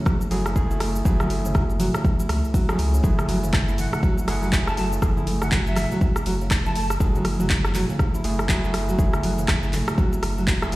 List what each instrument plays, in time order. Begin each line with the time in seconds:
Already playing: tine electric piano A3 E4 G#4
0.05 nylon-string guitar F#3, kick, cross-stick, high conga, shaker
0.21 muted conga, high conga, shaker
0.31 sub bass F#1, nylon-string guitar F#3, tine electric piano A3 E4 G#4, open hi-hat, shaker
0.46 nylon-string guitar C#3, cross-stick, high conga, shaker
0.56 tine electric piano A3 E4 G#4, kick, muted conga, shaker
0.70 sub bass F#1, nylon-string guitar E4, shaker
0.80 nylon-string guitar A3, cross-stick, open hi-hat, muted conga, shaker
0.95 shaker
1.05 sub bass F#1, nylon-string guitar F#3, tine electric piano A3 E4 G#4, kick, muted conga, high conga, shaker
1.20 nylon-string guitar F#3, cross-stick, low conga, shaker
1.30 sub bass F#1, open hi-hat, high conga, shaker
1.45 nylon-string guitar C#4, mid tom, muted conga, shaker
1.54 nylon-string guitar F#3, kick, cross-stick, low conga, shaker
1.70 muted conga, shaker
1.80 nylon-string guitar F#3, mid tom, open hi-hat, high conga, shaker
1.94 nylon-string guitar C#3, cross-stick, muted conga, low conga, shaker
2.05 kick, high conga, shaker
2.20 nylon-string guitar E4, muted conga, shaker
2.29 sub bass C#2, nylon-string guitar A3, cross-stick, open hi-hat, shaker
2.44 shaker
2.54 nylon-string guitar F#3, kick, open hi-hat, muted conga, shaker
2.69 nylon-string guitar F#3, tine electric piano A3 E4 G#4, cross-stick, high conga, shaker
2.78 sub bass C#2, open hi-hat, muted conga, shaker
2.94 nylon-string guitar C#4, shaker
3.03 sub bass F#1, nylon-string guitar F#3, tine electric piano A3 E4 G#4, kick, muted conga, high conga, shaker
3.19 cross-stick, low conga, shaker
3.28 sub bass F#1, nylon-string guitar F#3, open hi-hat, high conga, shaker
3.43 nylon-string guitar C#3, mid tom, muted conga, shaker
3.53 kick, cross-stick, clap, low conga, shaker
3.68 nylon-string guitar E4, muted conga, shaker
3.78 nylon-string guitar A3, flute F#5, mid tom, open hi-hat, high conga, shaker
3.93 flute F#5, cross-stick, muted conga, low conga, shaker
4.03 nylon-string guitar F#3, kick, high conga, shaker
4.17 nylon-string guitar F#3, muted conga, high conga, shaker
4.28 sub bass F#1, tine electric piano A3 E4 G#4, flute F#5, cross-stick, open hi-hat, shaker
4.42 nylon-string guitar F#3, flute F#5, high conga, shaker
4.53 nylon-string guitar F#3, tine electric piano A3 G#4, kick, clap, muted conga, shaker
4.67 sub bass F#1, flute A5, cross-stick, shaker
4.77 nylon-string guitar F#3, flute A5, open hi-hat, muted conga, shaker
4.92 nylon-string guitar C#3, shaker
5.02 sub bass F#1, tine electric piano A3 E4 G#4, kick, cross-stick, muted conga, high conga, shaker
5.17 nylon-string guitar E4, low conga, shaker
5.27 sub bass F#1, nylon-string guitar A3, open hi-hat, high conga, shaker
5.42 flute F#5, cross-stick, mid tom, muted conga, shaker
5.52 nylon-string guitar F#3, flute F#5, kick, clap, low conga, shaker
5.66 nylon-string guitar F#3, flute E5, muted conga, shaker
5.76 cross-stick, clap, mid tom, open hi-hat, high conga, shaker
5.91 nylon-string guitar F#3, muted conga, low conga, shaker
6.01 nylon-string guitar F#3, kick, high conga, shaker
6.16 cross-stick, muted conga, shaker
6.26 sub bass F#1, nylon-string guitar F#3, open hi-hat, shaker
6.41 nylon-string guitar C#3, shaker
6.51 kick, cross-stick, clap, open hi-hat, muted conga, shaker
6.66 sub bass F#1, nylon-string guitar E4, flute A5, high conga, shaker
6.75 nylon-string guitar A3, flute A5, open hi-hat, muted conga, shaker
6.90 cross-stick, shaker
7.00 sub bass F#1, nylon-string guitar F#3, tine electric piano A3 E4 G#4, kick, muted conga, high conga, shaker
7.15 nylon-string guitar F#3, low conga, shaker
7.25 sub bass F#1, cross-stick, open hi-hat, high conga, shaker
7.40 nylon-string guitar F#3, mid tom, muted conga, shaker
7.50 nylon-string guitar F#3, kick, clap, low conga, shaker
7.65 cross-stick, muted conga, shaker
7.75 nylon-string guitar F#3, clap, mid tom, open hi-hat, high conga, shaker
7.89 nylon-string guitar C#3, muted conga, low conga, shaker
7.99 kick, cross-stick, high conga, shaker
8.14 nylon-string guitar E4, muted conga, high conga, shaker
8.24 sub bass F#1, tine electric piano A3 E4 G#4, nylon-string guitar A3, open hi-hat, shaker
8.39 cross-stick, high conga, shaker
8.49 nylon-string guitar F#3, tine electric piano A3 E4 G#4, kick, clap, shaker
8.64 sub bass F#1, nylon-string guitar F#3, shaker
8.74 cross-stick, open hi-hat, muted conga, shaker
8.89 nylon-string guitar F#3, shaker
8.99 sub bass F#1, nylon-string guitar F#3, tine electric piano A3 E4 G#4, kick, muted conga, high conga, shaker
9.13 cross-stick, low conga, shaker
9.23 sub bass F#1, nylon-string guitar F#3, open hi-hat, high conga, shaker
9.38 nylon-string guitar C#3, mid tom, muted conga, shaker
9.48 kick, cross-stick, clap, low conga, shaker
9.63 nylon-string guitar E4, muted conga, shaker
9.73 nylon-string guitar A3, clap, mid tom, open hi-hat, high conga, shaker
9.88 cross-stick, muted conga, low conga, shaker
9.98 nylon-string guitar F#3, kick, high conga, shaker
10.13 nylon-string guitar F#3, muted conga, shaker
10.23 sub bass F#1, cross-stick, open hi-hat, shaker
10.38 nylon-string guitar F#3, shaker
10.47 nylon-string guitar F#3, kick, clap, open hi-hat, muted conga, shaker
10.62 sub bass E1, tine electric piano A3 E4 G#4, cross-stick, high conga, shaker
10.72 sub bass F#1, nylon-string guitar F#3, open hi-hat, shaker